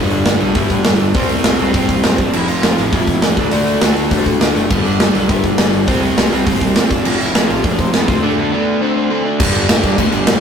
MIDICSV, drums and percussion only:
0, 0, Header, 1, 2, 480
1, 0, Start_track
1, 0, Tempo, 296150
1, 1867, Time_signature, 4, 2, 24, 8
1, 7620, Tempo, 293255
1, 16949, End_track
2, 0, Start_track
2, 0, Title_t, "Drums"
2, 171, Note_on_c, 9, 46, 53
2, 333, Note_off_c, 9, 46, 0
2, 412, Note_on_c, 9, 46, 73
2, 416, Note_on_c, 9, 38, 112
2, 574, Note_off_c, 9, 46, 0
2, 578, Note_off_c, 9, 38, 0
2, 656, Note_on_c, 9, 46, 53
2, 818, Note_off_c, 9, 46, 0
2, 888, Note_on_c, 9, 46, 73
2, 895, Note_on_c, 9, 36, 108
2, 1050, Note_off_c, 9, 46, 0
2, 1057, Note_off_c, 9, 36, 0
2, 1130, Note_on_c, 9, 46, 54
2, 1136, Note_on_c, 9, 36, 80
2, 1292, Note_off_c, 9, 46, 0
2, 1298, Note_off_c, 9, 36, 0
2, 1369, Note_on_c, 9, 46, 77
2, 1372, Note_on_c, 9, 38, 112
2, 1531, Note_off_c, 9, 46, 0
2, 1534, Note_off_c, 9, 38, 0
2, 1615, Note_on_c, 9, 46, 52
2, 1777, Note_off_c, 9, 46, 0
2, 1853, Note_on_c, 9, 46, 79
2, 1859, Note_on_c, 9, 36, 118
2, 2015, Note_off_c, 9, 46, 0
2, 2021, Note_off_c, 9, 36, 0
2, 2097, Note_on_c, 9, 46, 56
2, 2259, Note_off_c, 9, 46, 0
2, 2334, Note_on_c, 9, 46, 85
2, 2337, Note_on_c, 9, 38, 112
2, 2496, Note_off_c, 9, 46, 0
2, 2499, Note_off_c, 9, 38, 0
2, 2580, Note_on_c, 9, 46, 59
2, 2742, Note_off_c, 9, 46, 0
2, 2822, Note_on_c, 9, 36, 103
2, 2826, Note_on_c, 9, 46, 82
2, 2984, Note_off_c, 9, 36, 0
2, 2988, Note_off_c, 9, 46, 0
2, 3062, Note_on_c, 9, 36, 84
2, 3063, Note_on_c, 9, 46, 55
2, 3224, Note_off_c, 9, 36, 0
2, 3225, Note_off_c, 9, 46, 0
2, 3298, Note_on_c, 9, 46, 74
2, 3302, Note_on_c, 9, 38, 106
2, 3460, Note_off_c, 9, 46, 0
2, 3464, Note_off_c, 9, 38, 0
2, 3540, Note_on_c, 9, 36, 91
2, 3542, Note_on_c, 9, 46, 54
2, 3702, Note_off_c, 9, 36, 0
2, 3704, Note_off_c, 9, 46, 0
2, 3782, Note_on_c, 9, 49, 99
2, 3944, Note_off_c, 9, 49, 0
2, 4024, Note_on_c, 9, 46, 50
2, 4186, Note_off_c, 9, 46, 0
2, 4265, Note_on_c, 9, 46, 74
2, 4268, Note_on_c, 9, 38, 112
2, 4427, Note_off_c, 9, 46, 0
2, 4430, Note_off_c, 9, 38, 0
2, 4508, Note_on_c, 9, 46, 54
2, 4670, Note_off_c, 9, 46, 0
2, 4744, Note_on_c, 9, 36, 108
2, 4744, Note_on_c, 9, 46, 76
2, 4906, Note_off_c, 9, 36, 0
2, 4906, Note_off_c, 9, 46, 0
2, 4982, Note_on_c, 9, 46, 59
2, 4984, Note_on_c, 9, 36, 85
2, 5144, Note_off_c, 9, 46, 0
2, 5146, Note_off_c, 9, 36, 0
2, 5221, Note_on_c, 9, 46, 71
2, 5224, Note_on_c, 9, 38, 99
2, 5383, Note_off_c, 9, 46, 0
2, 5386, Note_off_c, 9, 38, 0
2, 5463, Note_on_c, 9, 36, 93
2, 5464, Note_on_c, 9, 46, 49
2, 5625, Note_off_c, 9, 36, 0
2, 5626, Note_off_c, 9, 46, 0
2, 5696, Note_on_c, 9, 46, 83
2, 5858, Note_off_c, 9, 46, 0
2, 5944, Note_on_c, 9, 46, 52
2, 6106, Note_off_c, 9, 46, 0
2, 6181, Note_on_c, 9, 46, 82
2, 6185, Note_on_c, 9, 38, 112
2, 6343, Note_off_c, 9, 46, 0
2, 6347, Note_off_c, 9, 38, 0
2, 6426, Note_on_c, 9, 46, 61
2, 6588, Note_off_c, 9, 46, 0
2, 6662, Note_on_c, 9, 46, 80
2, 6667, Note_on_c, 9, 36, 108
2, 6824, Note_off_c, 9, 46, 0
2, 6829, Note_off_c, 9, 36, 0
2, 6907, Note_on_c, 9, 36, 85
2, 6909, Note_on_c, 9, 46, 61
2, 7069, Note_off_c, 9, 36, 0
2, 7071, Note_off_c, 9, 46, 0
2, 7146, Note_on_c, 9, 46, 78
2, 7149, Note_on_c, 9, 38, 105
2, 7308, Note_off_c, 9, 46, 0
2, 7311, Note_off_c, 9, 38, 0
2, 7397, Note_on_c, 9, 46, 54
2, 7559, Note_off_c, 9, 46, 0
2, 7627, Note_on_c, 9, 36, 114
2, 7628, Note_on_c, 9, 57, 104
2, 7791, Note_off_c, 9, 36, 0
2, 7792, Note_off_c, 9, 57, 0
2, 7869, Note_on_c, 9, 46, 52
2, 8033, Note_off_c, 9, 46, 0
2, 8108, Note_on_c, 9, 46, 77
2, 8112, Note_on_c, 9, 38, 115
2, 8272, Note_off_c, 9, 46, 0
2, 8275, Note_off_c, 9, 38, 0
2, 8353, Note_on_c, 9, 46, 59
2, 8517, Note_off_c, 9, 46, 0
2, 8588, Note_on_c, 9, 36, 114
2, 8590, Note_on_c, 9, 46, 72
2, 8751, Note_off_c, 9, 36, 0
2, 8754, Note_off_c, 9, 46, 0
2, 8823, Note_on_c, 9, 46, 55
2, 8825, Note_on_c, 9, 36, 81
2, 8987, Note_off_c, 9, 46, 0
2, 8988, Note_off_c, 9, 36, 0
2, 9057, Note_on_c, 9, 46, 77
2, 9060, Note_on_c, 9, 38, 114
2, 9221, Note_off_c, 9, 46, 0
2, 9224, Note_off_c, 9, 38, 0
2, 9304, Note_on_c, 9, 46, 51
2, 9468, Note_off_c, 9, 46, 0
2, 9546, Note_on_c, 9, 36, 108
2, 9547, Note_on_c, 9, 46, 80
2, 9710, Note_off_c, 9, 36, 0
2, 9711, Note_off_c, 9, 46, 0
2, 9796, Note_on_c, 9, 46, 52
2, 9960, Note_off_c, 9, 46, 0
2, 10034, Note_on_c, 9, 46, 81
2, 10037, Note_on_c, 9, 38, 113
2, 10198, Note_off_c, 9, 46, 0
2, 10201, Note_off_c, 9, 38, 0
2, 10279, Note_on_c, 9, 46, 63
2, 10443, Note_off_c, 9, 46, 0
2, 10509, Note_on_c, 9, 36, 106
2, 10510, Note_on_c, 9, 46, 81
2, 10673, Note_off_c, 9, 36, 0
2, 10674, Note_off_c, 9, 46, 0
2, 10748, Note_on_c, 9, 36, 85
2, 10752, Note_on_c, 9, 46, 61
2, 10912, Note_off_c, 9, 36, 0
2, 10916, Note_off_c, 9, 46, 0
2, 10984, Note_on_c, 9, 46, 78
2, 10987, Note_on_c, 9, 38, 112
2, 11148, Note_off_c, 9, 46, 0
2, 11151, Note_off_c, 9, 38, 0
2, 11230, Note_on_c, 9, 36, 95
2, 11235, Note_on_c, 9, 46, 56
2, 11393, Note_off_c, 9, 36, 0
2, 11398, Note_off_c, 9, 46, 0
2, 11467, Note_on_c, 9, 49, 100
2, 11631, Note_off_c, 9, 49, 0
2, 11718, Note_on_c, 9, 46, 55
2, 11882, Note_off_c, 9, 46, 0
2, 11956, Note_on_c, 9, 46, 82
2, 11959, Note_on_c, 9, 38, 111
2, 12120, Note_off_c, 9, 46, 0
2, 12123, Note_off_c, 9, 38, 0
2, 12204, Note_on_c, 9, 46, 60
2, 12367, Note_off_c, 9, 46, 0
2, 12432, Note_on_c, 9, 36, 104
2, 12433, Note_on_c, 9, 46, 72
2, 12596, Note_off_c, 9, 36, 0
2, 12597, Note_off_c, 9, 46, 0
2, 12669, Note_on_c, 9, 46, 58
2, 12672, Note_on_c, 9, 36, 85
2, 12832, Note_off_c, 9, 46, 0
2, 12835, Note_off_c, 9, 36, 0
2, 12914, Note_on_c, 9, 46, 68
2, 12917, Note_on_c, 9, 38, 104
2, 13077, Note_off_c, 9, 46, 0
2, 13081, Note_off_c, 9, 38, 0
2, 13154, Note_on_c, 9, 36, 103
2, 13158, Note_on_c, 9, 46, 52
2, 13318, Note_off_c, 9, 36, 0
2, 13322, Note_off_c, 9, 46, 0
2, 15310, Note_on_c, 9, 36, 127
2, 15310, Note_on_c, 9, 49, 127
2, 15310, Note_on_c, 9, 57, 97
2, 15473, Note_off_c, 9, 49, 0
2, 15473, Note_off_c, 9, 57, 0
2, 15474, Note_off_c, 9, 36, 0
2, 15551, Note_on_c, 9, 57, 62
2, 15715, Note_off_c, 9, 57, 0
2, 15786, Note_on_c, 9, 57, 93
2, 15789, Note_on_c, 9, 38, 123
2, 15950, Note_off_c, 9, 57, 0
2, 15953, Note_off_c, 9, 38, 0
2, 16020, Note_on_c, 9, 57, 64
2, 16025, Note_on_c, 9, 36, 87
2, 16184, Note_off_c, 9, 57, 0
2, 16188, Note_off_c, 9, 36, 0
2, 16263, Note_on_c, 9, 36, 96
2, 16267, Note_on_c, 9, 57, 79
2, 16427, Note_off_c, 9, 36, 0
2, 16431, Note_off_c, 9, 57, 0
2, 16494, Note_on_c, 9, 57, 60
2, 16658, Note_off_c, 9, 57, 0
2, 16733, Note_on_c, 9, 57, 81
2, 16737, Note_on_c, 9, 38, 117
2, 16897, Note_off_c, 9, 57, 0
2, 16900, Note_off_c, 9, 38, 0
2, 16949, End_track
0, 0, End_of_file